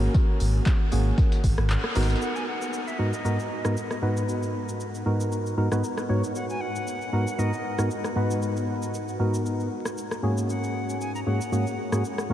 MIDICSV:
0, 0, Header, 1, 5, 480
1, 0, Start_track
1, 0, Key_signature, 5, "minor"
1, 0, Tempo, 517241
1, 134, Time_signature, 4, 2, 24, 8
1, 11446, End_track
2, 0, Start_track
2, 0, Title_t, "Flute"
2, 0, Program_c, 0, 73
2, 2054, Note_on_c, 0, 78, 95
2, 2185, Note_on_c, 0, 80, 92
2, 2199, Note_off_c, 0, 78, 0
2, 2290, Note_off_c, 0, 80, 0
2, 2295, Note_on_c, 0, 78, 94
2, 2666, Note_on_c, 0, 76, 82
2, 2680, Note_off_c, 0, 78, 0
2, 2773, Note_on_c, 0, 75, 80
2, 2787, Note_off_c, 0, 76, 0
2, 2898, Note_off_c, 0, 75, 0
2, 2904, Note_on_c, 0, 75, 80
2, 3696, Note_off_c, 0, 75, 0
2, 5893, Note_on_c, 0, 78, 97
2, 6016, Note_off_c, 0, 78, 0
2, 6025, Note_on_c, 0, 80, 100
2, 6133, Note_on_c, 0, 78, 101
2, 6147, Note_off_c, 0, 80, 0
2, 6854, Note_on_c, 0, 75, 81
2, 6868, Note_off_c, 0, 78, 0
2, 7334, Note_off_c, 0, 75, 0
2, 9736, Note_on_c, 0, 78, 89
2, 10181, Note_off_c, 0, 78, 0
2, 10214, Note_on_c, 0, 80, 90
2, 10336, Note_off_c, 0, 80, 0
2, 10345, Note_on_c, 0, 82, 90
2, 10394, Note_off_c, 0, 82, 0
2, 10456, Note_on_c, 0, 78, 91
2, 11378, Note_off_c, 0, 78, 0
2, 11446, End_track
3, 0, Start_track
3, 0, Title_t, "Synth stab"
3, 0, Program_c, 1, 62
3, 0, Note_on_c, 1, 58, 85
3, 0, Note_on_c, 1, 61, 79
3, 0, Note_on_c, 1, 66, 80
3, 0, Note_on_c, 1, 70, 98
3, 825, Note_off_c, 1, 58, 0
3, 827, Note_off_c, 1, 61, 0
3, 828, Note_off_c, 1, 66, 0
3, 829, Note_off_c, 1, 70, 0
3, 852, Note_on_c, 1, 58, 77
3, 853, Note_on_c, 1, 61, 67
3, 854, Note_on_c, 1, 66, 66
3, 856, Note_on_c, 1, 68, 83
3, 1307, Note_off_c, 1, 58, 0
3, 1307, Note_off_c, 1, 61, 0
3, 1308, Note_off_c, 1, 66, 0
3, 1309, Note_off_c, 1, 68, 0
3, 1811, Note_on_c, 1, 59, 76
3, 1813, Note_on_c, 1, 63, 72
3, 1814, Note_on_c, 1, 66, 73
3, 1816, Note_on_c, 1, 70, 89
3, 2293, Note_off_c, 1, 59, 0
3, 2293, Note_off_c, 1, 63, 0
3, 2294, Note_off_c, 1, 66, 0
3, 2295, Note_off_c, 1, 70, 0
3, 2771, Note_on_c, 1, 44, 69
3, 2772, Note_on_c, 1, 59, 63
3, 2773, Note_on_c, 1, 63, 62
3, 2775, Note_on_c, 1, 66, 63
3, 2775, Note_on_c, 1, 70, 77
3, 2893, Note_off_c, 1, 44, 0
3, 2894, Note_off_c, 1, 59, 0
3, 2894, Note_off_c, 1, 63, 0
3, 2895, Note_off_c, 1, 66, 0
3, 2895, Note_off_c, 1, 70, 0
3, 3010, Note_on_c, 1, 44, 72
3, 3012, Note_on_c, 1, 59, 66
3, 3012, Note_on_c, 1, 63, 65
3, 3014, Note_on_c, 1, 66, 66
3, 3015, Note_on_c, 1, 70, 83
3, 3133, Note_off_c, 1, 44, 0
3, 3133, Note_off_c, 1, 59, 0
3, 3134, Note_off_c, 1, 63, 0
3, 3135, Note_off_c, 1, 66, 0
3, 3135, Note_off_c, 1, 70, 0
3, 3381, Note_on_c, 1, 44, 79
3, 3382, Note_on_c, 1, 59, 70
3, 3384, Note_on_c, 1, 63, 74
3, 3385, Note_on_c, 1, 66, 69
3, 3386, Note_on_c, 1, 70, 87
3, 3483, Note_off_c, 1, 44, 0
3, 3483, Note_off_c, 1, 59, 0
3, 3484, Note_off_c, 1, 63, 0
3, 3485, Note_off_c, 1, 66, 0
3, 3485, Note_off_c, 1, 70, 0
3, 3729, Note_on_c, 1, 44, 83
3, 3731, Note_on_c, 1, 59, 77
3, 3733, Note_on_c, 1, 63, 76
3, 3735, Note_on_c, 1, 66, 77
3, 3737, Note_on_c, 1, 71, 89
3, 4665, Note_off_c, 1, 44, 0
3, 4666, Note_off_c, 1, 59, 0
3, 4667, Note_off_c, 1, 63, 0
3, 4668, Note_off_c, 1, 66, 0
3, 4669, Note_off_c, 1, 71, 0
3, 4690, Note_on_c, 1, 44, 73
3, 4692, Note_on_c, 1, 59, 64
3, 4693, Note_on_c, 1, 63, 65
3, 4694, Note_on_c, 1, 66, 66
3, 4695, Note_on_c, 1, 70, 79
3, 5146, Note_off_c, 1, 44, 0
3, 5147, Note_off_c, 1, 59, 0
3, 5147, Note_off_c, 1, 63, 0
3, 5148, Note_off_c, 1, 66, 0
3, 5148, Note_off_c, 1, 70, 0
3, 5170, Note_on_c, 1, 44, 84
3, 5171, Note_on_c, 1, 59, 77
3, 5173, Note_on_c, 1, 63, 79
3, 5174, Note_on_c, 1, 66, 79
3, 5175, Note_on_c, 1, 70, 96
3, 5272, Note_off_c, 1, 44, 0
3, 5272, Note_off_c, 1, 59, 0
3, 5273, Note_off_c, 1, 63, 0
3, 5274, Note_off_c, 1, 66, 0
3, 5274, Note_off_c, 1, 70, 0
3, 5301, Note_on_c, 1, 44, 83
3, 5303, Note_on_c, 1, 59, 76
3, 5304, Note_on_c, 1, 63, 78
3, 5305, Note_on_c, 1, 66, 78
3, 5306, Note_on_c, 1, 71, 94
3, 5403, Note_off_c, 1, 44, 0
3, 5404, Note_off_c, 1, 59, 0
3, 5404, Note_off_c, 1, 63, 0
3, 5405, Note_off_c, 1, 66, 0
3, 5406, Note_off_c, 1, 71, 0
3, 5651, Note_on_c, 1, 44, 80
3, 5652, Note_on_c, 1, 59, 68
3, 5653, Note_on_c, 1, 63, 72
3, 5655, Note_on_c, 1, 66, 69
3, 5656, Note_on_c, 1, 73, 87
3, 5773, Note_off_c, 1, 44, 0
3, 5774, Note_off_c, 1, 59, 0
3, 5774, Note_off_c, 1, 63, 0
3, 5775, Note_off_c, 1, 66, 0
3, 5776, Note_off_c, 1, 73, 0
3, 6612, Note_on_c, 1, 44, 71
3, 6613, Note_on_c, 1, 59, 65
3, 6614, Note_on_c, 1, 63, 66
3, 6615, Note_on_c, 1, 66, 65
3, 6616, Note_on_c, 1, 70, 77
3, 6733, Note_off_c, 1, 44, 0
3, 6734, Note_off_c, 1, 59, 0
3, 6734, Note_off_c, 1, 63, 0
3, 6735, Note_off_c, 1, 66, 0
3, 6736, Note_off_c, 1, 70, 0
3, 6851, Note_on_c, 1, 44, 74
3, 6852, Note_on_c, 1, 59, 67
3, 6853, Note_on_c, 1, 63, 65
3, 6854, Note_on_c, 1, 66, 65
3, 6855, Note_on_c, 1, 70, 81
3, 6973, Note_off_c, 1, 44, 0
3, 6973, Note_off_c, 1, 59, 0
3, 6974, Note_off_c, 1, 63, 0
3, 6975, Note_off_c, 1, 66, 0
3, 6975, Note_off_c, 1, 70, 0
3, 7222, Note_on_c, 1, 44, 77
3, 7223, Note_on_c, 1, 59, 71
3, 7224, Note_on_c, 1, 63, 70
3, 7225, Note_on_c, 1, 66, 72
3, 7227, Note_on_c, 1, 70, 86
3, 7324, Note_off_c, 1, 44, 0
3, 7324, Note_off_c, 1, 59, 0
3, 7325, Note_off_c, 1, 63, 0
3, 7325, Note_off_c, 1, 66, 0
3, 7326, Note_off_c, 1, 70, 0
3, 7568, Note_on_c, 1, 44, 80
3, 7571, Note_on_c, 1, 59, 76
3, 7573, Note_on_c, 1, 63, 78
3, 7575, Note_on_c, 1, 66, 76
3, 7577, Note_on_c, 1, 71, 91
3, 8505, Note_off_c, 1, 44, 0
3, 8506, Note_off_c, 1, 59, 0
3, 8507, Note_off_c, 1, 63, 0
3, 8508, Note_off_c, 1, 66, 0
3, 8510, Note_off_c, 1, 71, 0
3, 8530, Note_on_c, 1, 44, 72
3, 8531, Note_on_c, 1, 59, 64
3, 8533, Note_on_c, 1, 63, 64
3, 8534, Note_on_c, 1, 66, 64
3, 8535, Note_on_c, 1, 70, 78
3, 8986, Note_off_c, 1, 44, 0
3, 8987, Note_off_c, 1, 59, 0
3, 8987, Note_off_c, 1, 63, 0
3, 8988, Note_off_c, 1, 66, 0
3, 8988, Note_off_c, 1, 70, 0
3, 9489, Note_on_c, 1, 44, 77
3, 9492, Note_on_c, 1, 58, 72
3, 9494, Note_on_c, 1, 61, 69
3, 9496, Note_on_c, 1, 66, 71
3, 9498, Note_on_c, 1, 68, 85
3, 10425, Note_off_c, 1, 44, 0
3, 10427, Note_off_c, 1, 58, 0
3, 10428, Note_off_c, 1, 61, 0
3, 10429, Note_off_c, 1, 66, 0
3, 10430, Note_off_c, 1, 68, 0
3, 10451, Note_on_c, 1, 44, 70
3, 10452, Note_on_c, 1, 58, 66
3, 10454, Note_on_c, 1, 61, 65
3, 10455, Note_on_c, 1, 66, 64
3, 10456, Note_on_c, 1, 68, 78
3, 10573, Note_off_c, 1, 44, 0
3, 10574, Note_off_c, 1, 58, 0
3, 10575, Note_off_c, 1, 61, 0
3, 10575, Note_off_c, 1, 66, 0
3, 10575, Note_off_c, 1, 68, 0
3, 10690, Note_on_c, 1, 44, 73
3, 10692, Note_on_c, 1, 58, 66
3, 10693, Note_on_c, 1, 61, 65
3, 10694, Note_on_c, 1, 66, 66
3, 10695, Note_on_c, 1, 68, 79
3, 10813, Note_off_c, 1, 44, 0
3, 10814, Note_off_c, 1, 58, 0
3, 10814, Note_off_c, 1, 61, 0
3, 10814, Note_off_c, 1, 66, 0
3, 10815, Note_off_c, 1, 68, 0
3, 11063, Note_on_c, 1, 44, 76
3, 11064, Note_on_c, 1, 58, 73
3, 11065, Note_on_c, 1, 61, 73
3, 11066, Note_on_c, 1, 66, 70
3, 11067, Note_on_c, 1, 68, 90
3, 11164, Note_off_c, 1, 44, 0
3, 11164, Note_off_c, 1, 58, 0
3, 11165, Note_off_c, 1, 61, 0
3, 11165, Note_off_c, 1, 66, 0
3, 11166, Note_off_c, 1, 68, 0
3, 11409, Note_on_c, 1, 44, 83
3, 11412, Note_on_c, 1, 58, 79
3, 11413, Note_on_c, 1, 61, 73
3, 11416, Note_on_c, 1, 66, 78
3, 11418, Note_on_c, 1, 70, 89
3, 11446, Note_off_c, 1, 44, 0
3, 11446, Note_off_c, 1, 58, 0
3, 11446, Note_off_c, 1, 61, 0
3, 11446, Note_off_c, 1, 66, 0
3, 11446, Note_off_c, 1, 70, 0
3, 11446, End_track
4, 0, Start_track
4, 0, Title_t, "Sub bass"
4, 0, Program_c, 2, 38
4, 373, Note_on_c, 2, 32, 97
4, 550, Note_off_c, 2, 32, 0
4, 855, Note_on_c, 2, 32, 99
4, 1031, Note_off_c, 2, 32, 0
4, 1333, Note_on_c, 2, 32, 96
4, 1427, Note_off_c, 2, 32, 0
4, 1465, Note_on_c, 2, 32, 98
4, 1628, Note_off_c, 2, 32, 0
4, 1813, Note_on_c, 2, 32, 82
4, 1990, Note_off_c, 2, 32, 0
4, 11446, End_track
5, 0, Start_track
5, 0, Title_t, "Drums"
5, 133, Note_on_c, 9, 54, 85
5, 134, Note_on_c, 9, 36, 113
5, 226, Note_off_c, 9, 54, 0
5, 227, Note_off_c, 9, 36, 0
5, 373, Note_on_c, 9, 46, 102
5, 373, Note_on_c, 9, 54, 67
5, 466, Note_off_c, 9, 46, 0
5, 466, Note_off_c, 9, 54, 0
5, 613, Note_on_c, 9, 38, 116
5, 613, Note_on_c, 9, 54, 84
5, 614, Note_on_c, 9, 36, 107
5, 615, Note_on_c, 9, 39, 120
5, 706, Note_off_c, 9, 36, 0
5, 706, Note_off_c, 9, 38, 0
5, 706, Note_off_c, 9, 54, 0
5, 708, Note_off_c, 9, 39, 0
5, 853, Note_on_c, 9, 46, 97
5, 854, Note_on_c, 9, 54, 67
5, 945, Note_off_c, 9, 46, 0
5, 946, Note_off_c, 9, 54, 0
5, 1093, Note_on_c, 9, 38, 106
5, 1093, Note_on_c, 9, 54, 78
5, 1094, Note_on_c, 9, 36, 112
5, 1186, Note_off_c, 9, 36, 0
5, 1186, Note_off_c, 9, 38, 0
5, 1186, Note_off_c, 9, 54, 0
5, 1225, Note_on_c, 9, 38, 107
5, 1225, Note_on_c, 9, 54, 82
5, 1317, Note_off_c, 9, 38, 0
5, 1317, Note_off_c, 9, 54, 0
5, 1333, Note_on_c, 9, 36, 57
5, 1334, Note_on_c, 9, 46, 100
5, 1334, Note_on_c, 9, 54, 80
5, 1426, Note_off_c, 9, 36, 0
5, 1426, Note_off_c, 9, 46, 0
5, 1427, Note_off_c, 9, 54, 0
5, 1465, Note_on_c, 9, 37, 86
5, 1557, Note_off_c, 9, 37, 0
5, 1574, Note_on_c, 9, 54, 61
5, 1575, Note_on_c, 9, 39, 122
5, 1666, Note_off_c, 9, 54, 0
5, 1668, Note_off_c, 9, 39, 0
5, 1705, Note_on_c, 9, 37, 79
5, 1705, Note_on_c, 9, 38, 36
5, 1797, Note_off_c, 9, 37, 0
5, 1798, Note_off_c, 9, 38, 0
5, 1812, Note_on_c, 9, 46, 101
5, 1814, Note_on_c, 9, 38, 83
5, 1814, Note_on_c, 9, 54, 66
5, 1880, Note_off_c, 9, 38, 0
5, 1880, Note_off_c, 9, 54, 0
5, 1880, Note_on_c, 9, 38, 84
5, 1880, Note_on_c, 9, 54, 65
5, 1905, Note_off_c, 9, 46, 0
5, 1946, Note_off_c, 9, 38, 0
5, 1946, Note_off_c, 9, 54, 0
5, 1946, Note_on_c, 9, 38, 88
5, 1946, Note_on_c, 9, 54, 64
5, 2000, Note_off_c, 9, 38, 0
5, 2000, Note_off_c, 9, 54, 0
5, 2000, Note_on_c, 9, 38, 84
5, 2000, Note_on_c, 9, 54, 65
5, 2057, Note_on_c, 9, 69, 53
5, 2093, Note_off_c, 9, 38, 0
5, 2093, Note_off_c, 9, 54, 0
5, 2150, Note_off_c, 9, 69, 0
5, 2189, Note_on_c, 9, 69, 31
5, 2282, Note_off_c, 9, 69, 0
5, 2428, Note_on_c, 9, 69, 61
5, 2521, Note_off_c, 9, 69, 0
5, 2537, Note_on_c, 9, 69, 54
5, 2630, Note_off_c, 9, 69, 0
5, 2669, Note_on_c, 9, 69, 30
5, 2762, Note_off_c, 9, 69, 0
5, 2909, Note_on_c, 9, 69, 63
5, 3001, Note_off_c, 9, 69, 0
5, 3017, Note_on_c, 9, 69, 54
5, 3110, Note_off_c, 9, 69, 0
5, 3149, Note_on_c, 9, 69, 30
5, 3242, Note_off_c, 9, 69, 0
5, 3384, Note_on_c, 9, 37, 75
5, 3388, Note_on_c, 9, 69, 63
5, 3476, Note_off_c, 9, 37, 0
5, 3481, Note_off_c, 9, 69, 0
5, 3498, Note_on_c, 9, 69, 52
5, 3590, Note_off_c, 9, 69, 0
5, 3625, Note_on_c, 9, 37, 68
5, 3629, Note_on_c, 9, 69, 32
5, 3717, Note_off_c, 9, 37, 0
5, 3722, Note_off_c, 9, 69, 0
5, 3869, Note_on_c, 9, 69, 63
5, 3962, Note_off_c, 9, 69, 0
5, 3978, Note_on_c, 9, 69, 52
5, 4071, Note_off_c, 9, 69, 0
5, 4109, Note_on_c, 9, 69, 30
5, 4202, Note_off_c, 9, 69, 0
5, 4349, Note_on_c, 9, 69, 62
5, 4442, Note_off_c, 9, 69, 0
5, 4458, Note_on_c, 9, 69, 52
5, 4551, Note_off_c, 9, 69, 0
5, 4590, Note_on_c, 9, 69, 30
5, 4683, Note_off_c, 9, 69, 0
5, 4830, Note_on_c, 9, 69, 64
5, 4922, Note_off_c, 9, 69, 0
5, 4938, Note_on_c, 9, 69, 52
5, 5031, Note_off_c, 9, 69, 0
5, 5069, Note_on_c, 9, 69, 28
5, 5162, Note_off_c, 9, 69, 0
5, 5305, Note_on_c, 9, 37, 75
5, 5309, Note_on_c, 9, 69, 60
5, 5398, Note_off_c, 9, 37, 0
5, 5402, Note_off_c, 9, 69, 0
5, 5418, Note_on_c, 9, 69, 52
5, 5511, Note_off_c, 9, 69, 0
5, 5545, Note_on_c, 9, 37, 68
5, 5549, Note_on_c, 9, 69, 30
5, 5638, Note_off_c, 9, 37, 0
5, 5642, Note_off_c, 9, 69, 0
5, 5789, Note_on_c, 9, 69, 58
5, 5882, Note_off_c, 9, 69, 0
5, 5898, Note_on_c, 9, 69, 50
5, 5991, Note_off_c, 9, 69, 0
5, 6029, Note_on_c, 9, 69, 30
5, 6122, Note_off_c, 9, 69, 0
5, 6269, Note_on_c, 9, 69, 59
5, 6362, Note_off_c, 9, 69, 0
5, 6378, Note_on_c, 9, 69, 50
5, 6471, Note_off_c, 9, 69, 0
5, 6509, Note_on_c, 9, 69, 29
5, 6602, Note_off_c, 9, 69, 0
5, 6749, Note_on_c, 9, 69, 61
5, 6842, Note_off_c, 9, 69, 0
5, 6858, Note_on_c, 9, 69, 48
5, 6951, Note_off_c, 9, 69, 0
5, 6989, Note_on_c, 9, 69, 28
5, 7082, Note_off_c, 9, 69, 0
5, 7225, Note_on_c, 9, 37, 71
5, 7229, Note_on_c, 9, 69, 59
5, 7317, Note_off_c, 9, 37, 0
5, 7322, Note_off_c, 9, 69, 0
5, 7338, Note_on_c, 9, 69, 50
5, 7431, Note_off_c, 9, 69, 0
5, 7465, Note_on_c, 9, 37, 66
5, 7469, Note_on_c, 9, 69, 29
5, 7557, Note_off_c, 9, 37, 0
5, 7562, Note_off_c, 9, 69, 0
5, 7709, Note_on_c, 9, 69, 57
5, 7802, Note_off_c, 9, 69, 0
5, 7817, Note_on_c, 9, 69, 49
5, 7910, Note_off_c, 9, 69, 0
5, 7949, Note_on_c, 9, 69, 27
5, 8042, Note_off_c, 9, 69, 0
5, 8189, Note_on_c, 9, 69, 58
5, 8282, Note_off_c, 9, 69, 0
5, 8298, Note_on_c, 9, 69, 49
5, 8390, Note_off_c, 9, 69, 0
5, 8429, Note_on_c, 9, 69, 28
5, 8522, Note_off_c, 9, 69, 0
5, 8669, Note_on_c, 9, 69, 58
5, 8762, Note_off_c, 9, 69, 0
5, 8778, Note_on_c, 9, 69, 50
5, 8871, Note_off_c, 9, 69, 0
5, 8909, Note_on_c, 9, 69, 28
5, 9002, Note_off_c, 9, 69, 0
5, 9145, Note_on_c, 9, 37, 75
5, 9150, Note_on_c, 9, 69, 60
5, 9238, Note_off_c, 9, 37, 0
5, 9242, Note_off_c, 9, 69, 0
5, 9258, Note_on_c, 9, 69, 48
5, 9351, Note_off_c, 9, 69, 0
5, 9386, Note_on_c, 9, 37, 69
5, 9390, Note_on_c, 9, 69, 29
5, 9478, Note_off_c, 9, 37, 0
5, 9483, Note_off_c, 9, 69, 0
5, 9630, Note_on_c, 9, 69, 57
5, 9723, Note_off_c, 9, 69, 0
5, 9738, Note_on_c, 9, 69, 50
5, 9831, Note_off_c, 9, 69, 0
5, 9870, Note_on_c, 9, 69, 29
5, 9963, Note_off_c, 9, 69, 0
5, 10110, Note_on_c, 9, 69, 59
5, 10203, Note_off_c, 9, 69, 0
5, 10219, Note_on_c, 9, 69, 51
5, 10312, Note_off_c, 9, 69, 0
5, 10350, Note_on_c, 9, 69, 29
5, 10443, Note_off_c, 9, 69, 0
5, 10590, Note_on_c, 9, 69, 59
5, 10683, Note_off_c, 9, 69, 0
5, 10698, Note_on_c, 9, 69, 49
5, 10791, Note_off_c, 9, 69, 0
5, 10830, Note_on_c, 9, 69, 29
5, 10923, Note_off_c, 9, 69, 0
5, 11066, Note_on_c, 9, 37, 77
5, 11070, Note_on_c, 9, 69, 60
5, 11158, Note_off_c, 9, 37, 0
5, 11163, Note_off_c, 9, 69, 0
5, 11178, Note_on_c, 9, 69, 49
5, 11271, Note_off_c, 9, 69, 0
5, 11305, Note_on_c, 9, 37, 73
5, 11310, Note_on_c, 9, 69, 30
5, 11398, Note_off_c, 9, 37, 0
5, 11403, Note_off_c, 9, 69, 0
5, 11446, End_track
0, 0, End_of_file